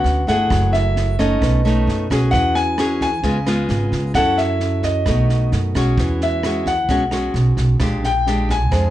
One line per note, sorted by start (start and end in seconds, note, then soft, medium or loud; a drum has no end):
0.00 0.48 D3 medium
0.00 0.24 B3 medium
0.00 0.24 C#4 medium
0.00 0.24 F#4 medium
0.00 0.27 F#5 medium
0.04 0.25 D2 medium
0.04 snare soft
0.27 0.48 G1 medium
0.27 1.15 A3 medium
0.27 1.15 E4 soft
0.27 1.16 G#4 medium
0.27 0.70 F#5 loud
0.27 kick soft
0.27 snare soft
0.50 1.42 F#1 medium
0.50 1.18 F#3 medium
0.50 kick medium
0.50 cross-stick medium
0.50 snare soft
0.73 1.20 E5 medium
0.73 snare soft
0.96 snare soft
1.19 1.60 A3 medium
1.19 1.61 C#4 medium
1.19 1.61 D#4 medium
1.19 2.06 D#5 medium
1.19 kick soft
1.19 snare soft
1.42 1.84 B1 medium
1.42 2.30 B2 medium
1.42 kick medium
1.42 cross-stick medium
1.42 snare soft
1.65 2.06 A3 medium
1.65 2.06 C#4 medium
1.65 2.07 D#4 medium
1.65 snare soft
1.87 2.08 F#2 medium
1.87 snare soft
2.10 2.31 B1 medium
2.10 2.77 C#4 medium
2.10 2.78 F#4 medium
2.10 2.79 G#4 medium
2.10 kick soft
2.10 cross-stick medium
2.10 snare soft
2.31 3.24 E2 medium
2.31 3.21 E3 medium
2.31 2.55 F#5 loud
2.31 kick medium
2.31 snare soft
2.55 2.98 G#5 loud
2.55 snare soft
2.78 3.09 C#4 medium
2.78 3.09 F#4 medium
2.78 3.10 G#4 medium
2.78 cross-stick medium
2.78 snare soft
3.01 3.89 G#5 medium
3.01 kick soft
3.01 snare soft
3.23 3.66 C#2 medium
3.23 4.13 C#3 soft
3.23 3.37 G#3 medium
3.23 3.37 B3 soft
3.23 3.38 F4 medium
3.23 kick medium
3.23 snare soft
3.47 4.11 G#3 medium
3.47 4.11 B3 medium
3.47 4.12 F4 medium
3.47 cross-stick medium
3.47 snare soft
3.69 3.90 G#1 medium
3.69 snare soft
3.92 4.13 C#2 medium
3.92 kick soft
3.92 snare soft
4.14 5.08 F#2 medium
4.14 5.04 F#3 medium
4.14 5.03 C#4 medium
4.14 5.03 E4 medium
4.14 5.03 A4 medium
4.14 4.36 F#5 loud
4.14 kick medium
4.14 cross-stick medium
4.14 snare soft
4.38 4.85 E5 medium
4.38 snare soft
4.60 snare soft
4.83 5.48 D#5 medium
4.83 kick soft
4.83 snare soft
5.06 5.49 B1 medium
5.06 5.96 B2 medium
5.06 5.72 A3 soft
5.06 5.72 D#4 medium
5.06 5.72 F#4 medium
5.06 kick medium
5.06 cross-stick soft
5.06 snare soft
5.29 snare soft
5.52 5.73 F#2 medium
5.52 snare soft
5.75 5.96 B1 medium
5.75 6.40 G#3 medium
5.75 6.41 C#4 medium
5.75 6.41 F#4 medium
5.75 kick soft
5.75 cross-stick medium
5.75 snare soft
5.98 6.89 E2 loud
5.98 6.88 E3 medium
5.98 kick medium
5.98 snare soft
6.21 6.64 E5 medium
6.21 snare soft
6.43 6.73 G#3 soft
6.43 6.74 C#4 soft
6.43 6.74 F#4 medium
6.43 cross-stick medium
6.43 snare soft
6.66 7.31 F#5 medium
6.66 kick soft
6.66 snare soft
6.89 7.32 B1 medium
6.89 7.78 B2 soft
6.89 7.03 G#3 medium
6.89 7.03 C#4 medium
6.89 7.03 F#4 medium
6.89 kick medium
6.89 snare soft
7.11 7.77 G#3 medium
7.11 7.77 C#4 medium
7.11 7.77 F#4 medium
7.11 cross-stick medium
7.11 snare soft
7.34 7.56 B1 medium
7.34 snare soft
7.57 7.79 B1 medium
7.57 kick soft
7.57 snare soft
7.80 8.72 A#1 medium
7.80 8.70 A#2 medium
7.80 8.10 G#3 medium
7.80 8.10 D4 medium
7.80 8.10 G4 medium
7.80 kick medium
7.80 cross-stick medium
7.80 snare soft
8.04 8.47 G5 medium
8.04 snare soft
8.27 8.56 G#3 medium
8.27 8.57 D4 medium
8.27 8.57 G4 medium
8.27 snare soft
8.49 8.90 G#5 medium
8.49 kick soft
8.49 snare soft
8.71 8.90 F2 medium
8.71 8.90 G#3 soft
8.71 8.90 D4 soft
8.71 kick medium
8.71 cross-stick medium
8.71 snare soft